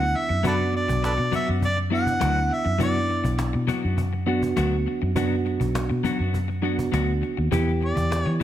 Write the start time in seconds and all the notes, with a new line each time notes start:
Already playing: D2 B3 D4 E4 F#5
0.15 E5, muted clean electric guitar stroke
0.29 F#2, muted clean electric guitar stroke
0.43 F#3 B3 D4 F#4 A4 B4 D5, cajon bass
0.73 D5, muted clean electric guitar stroke, cajon slap
0.88 B1, muted clean electric guitar stroke, cajon bass
1.03 A4 B4 D5, muted clean electric guitar stroke, cajon slap
1.18 B2, muted clean electric guitar stroke
1.32 F#3 B3 D4 F#4 E5, cajon bass
1.47 F#2 B3 D4 F#4
1.62 D5, cajon bass, cajon slap
1.77 muted clean electric guitar stroke
1.90 F#3 B3 D4 E4 F#4 F#5, cajon slap
2.06 muted clean electric guitar stroke, cajon bass
2.20 D2 F#3 B3 D4 F#4, cajon slap
2.36 cajon slap
2.50 E5, muted clean electric guitar stroke
2.65 F#2, muted clean electric guitar stroke
2.78 F#3 B3 D4 E4 F#4 D5, cajon bass
3.09 muted clean electric guitar stroke, cajon slap
3.24 B1, muted clean electric guitar stroke, cajon bass
3.38 muted clean electric guitar stroke, cajon slap
3.53 B2, muted clean electric guitar stroke
3.67 F#3 B3 D4 F#4, cajon bass
3.82 F#2 B3 D4 F#4
3.97 cajon bass, cajon slap
4.13 muted clean electric guitar stroke, cajon slap
4.26 F#3 B3 D4 F#4, cajon slap
4.42 muted clean electric guitar stroke, cajon bass
4.57 D2 F#3 B3 D4 F#4, cajon slap
4.87 muted clean electric guitar stroke
5.02 F#2, muted clean electric guitar stroke
5.16 F#3 B3 D4 F#4, cajon bass
5.45 muted clean electric guitar stroke, cajon slap
5.60 B1, muted clean electric guitar stroke, cajon bass
5.75 muted clean electric guitar stroke, cajon slap
5.90 B2, muted clean electric guitar stroke
6.04 F#3 B3 D4 F#4, cajon bass
6.19 F#2 B3 D4 F#4
6.34 cajon bass, cajon slap
6.48 muted clean electric guitar stroke, cajon slap
6.62 F#3 B3 D4 F#4, cajon slap
6.78 muted clean electric guitar stroke, cajon bass
6.92 D2 F#3 B3 D4 F#4, cajon slap
7.22 muted clean electric guitar stroke, cajon slap
7.37 D#2, muted clean electric guitar stroke
7.51 E2 E3 B3 E4 G4, cajon bass
7.68 cajon slap
7.81 muted clean electric guitar stroke, cajon slap
7.85 D5
7.96 E2, muted clean electric guitar stroke, cajon bass
8.11 muted clean electric guitar stroke, cajon slap
8.24 E3 C#5, muted clean electric guitar stroke
8.40 E3